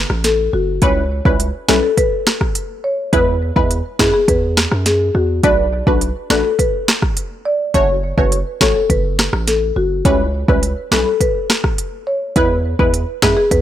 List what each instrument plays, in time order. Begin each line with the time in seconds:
0.10 808-style bass A1, cross-stick
0.24 marimba A4, snare, closed hi-hat
0.53 808-style bass F#1, marimba F#4
0.82 808-style bass C#2, synth stab G3 C#4 E4 B4, marimba C#5, kick, closed hi-hat
1.25 808-style bass C#2, synth stab G3 C#4 E4 B4, marimba B4, kick
1.40 closed hi-hat
1.68 808-style bass B1, synth stab G3 C#4 E4 B4, marimba A4, cross-stick, snare
1.83 marimba A4
1.97 marimba B4, kick, closed hi-hat
2.27 cross-stick, snare
2.41 kick, cross-stick
2.55 closed hi-hat
2.84 marimba C#5
3.13 808-style bass E2, synth stab G#3 B3 E4 B4, marimba B4, kick, closed hi-hat
3.56 808-style bass E2, synth stab G#3 B3 E4 B4, marimba B4, kick
3.71 closed hi-hat
3.99 808-style bass F#2, synth stab G#3 B3 E4 B4, marimba G#4, kick, cross-stick, snare
4.14 marimba G#4
4.28 808-style bass E2, marimba B4, kick, closed hi-hat
4.57 cross-stick, snare
4.71 808-style bass F#2, cross-stick
4.86 marimba G#4, snare, closed hi-hat
5.15 808-style bass E2, marimba F#4
5.43 808-style bass B1, synth stab A3 D4 F#4 B4, marimba D5, kick, closed hi-hat
5.87 808-style bass B1, synth stab A3 D4 F#4 B4, marimba B4, kick
6.01 closed hi-hat
6.30 808-style bass A1, synth stab A3 D4 F#4 B4, marimba A4, cross-stick, snare
6.44 marimba A4
6.59 marimba B4, kick, closed hi-hat
6.88 cross-stick, snare
7.02 kick, cross-stick
7.17 closed hi-hat
7.45 marimba D5
7.74 808-style bass F#1, synth stab A3 C#4 F#4 C#5, marimba C#5, kick, closed hi-hat
8.18 808-style bass F#1, synth stab A3 C#4 F#4 C#5, marimba B4, kick
8.32 closed hi-hat
8.61 808-style bass A1, synth stab A3 C#4 F#4 C#5, marimba A4, kick, cross-stick, snare
8.76 marimba A4
8.90 808-style bass F#1, marimba B4, kick, closed hi-hat
9.19 cross-stick, snare
9.33 808-style bass A1, cross-stick
9.47 marimba A4, snare, closed hi-hat
9.76 808-style bass F#1, marimba F#4
10.05 808-style bass C#2, synth stab G3 C#4 E4 B4, marimba C#5, kick, closed hi-hat
10.48 808-style bass C#2, synth stab G3 C#4 E4 B4, marimba B4, kick
10.63 closed hi-hat
10.91 808-style bass B1, synth stab G3 C#4 E4 B4, marimba A4, cross-stick, snare
11.06 marimba A4
11.20 marimba B4, kick, closed hi-hat
11.50 cross-stick, snare
11.64 kick, cross-stick
11.78 closed hi-hat
12.07 marimba C#5
12.36 808-style bass E2, synth stab G#3 B3 E4 B4, marimba B4, kick, closed hi-hat
12.79 808-style bass E2, synth stab G#3 B3 E4 B4, marimba B4, kick
12.94 closed hi-hat
13.22 808-style bass F#2, synth stab G#3 B3 E4 B4, marimba G#4, kick, cross-stick, snare
13.37 marimba G#4
13.51 808-style bass E2, marimba B4, kick, closed hi-hat